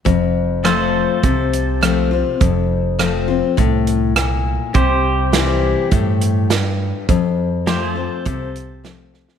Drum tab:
HH |x---x---x-x-x---|x---x---x-x-x---|x---x---x-x-x---|x---x---x-x-x---|
SD |----r-------r---|----r-------r---|----o-------o---|----o-------o-oo|
BD |o-------o-------|o-------o-------|o-------o-------|o-------o-------|